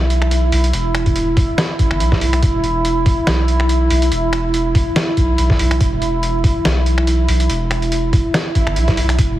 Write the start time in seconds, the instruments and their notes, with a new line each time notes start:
Already playing: sub bass B1, ambient pad E4
0.10 closed hi-hat
0.22 finger snap
0.31 closed hi-hat
0.52 sub bass B1, open hi-hat
0.64 closed hi-hat
0.73 sub bass E1, closed hi-hat
0.95 finger snap, closed hi-hat
1.06 kick, closed hi-hat
1.16 closed hi-hat
1.37 sub bass E1, kick, open hi-hat
1.58 finger snap, snare, closed hi-hat
1.79 sub bass A1, kick, closed hi-hat
1.91 sub bass G1, finger snap
2.00 sub bass B1, closed hi-hat
2.12 kick, snare
2.21 open hi-hat
2.33 finger snap, closed hi-hat
2.42 sub bass E1, kick, closed hi-hat
2.64 closed hi-hat
2.85 closed hi-hat
3.06 sub bass E1, kick, open hi-hat
3.27 sub bass B1, finger snap, snare, closed hi-hat
3.48 closed hi-hat
3.60 finger snap
3.69 closed hi-hat
3.90 sub bass B1, open hi-hat
4.02 closed hi-hat
4.12 sub bass E1, closed hi-hat
4.33 finger snap, closed hi-hat
4.54 closed hi-hat
4.75 sub bass E1, kick, open hi-hat
4.96 finger snap, snare, closed hi-hat
5.17 sub bass B1, kick, closed hi-hat
5.38 sub bass B1, closed hi-hat
5.50 kick, snare
5.59 sub bass B1, open hi-hat
5.71 finger snap, closed hi-hat
5.81 sub bass E1, kick, closed hi-hat
6.02 closed hi-hat
6.23 closed hi-hat
6.44 sub bass E1, kick, open hi-hat
6.65 sub bass B1, finger snap, snare, closed hi-hat
6.86 closed hi-hat
6.98 finger snap
7.07 closed hi-hat
7.28 sub bass B1, open hi-hat
7.40 closed hi-hat
7.50 sub bass E1, closed hi-hat
7.71 finger snap, closed hi-hat
7.82 closed hi-hat
7.92 closed hi-hat
8.13 sub bass E1, kick, open hi-hat
8.34 finger snap, snare, closed hi-hat, swell
8.55 sub bass A1, kick, closed hi-hat
8.67 sub bass G1, finger snap
8.76 sub bass B1, closed hi-hat
8.88 kick, snare, closed hi-hat
8.97 open hi-hat
9.09 finger snap, closed hi-hat
9.19 sub bass E1, ambient pad E4, kick, closed hi-hat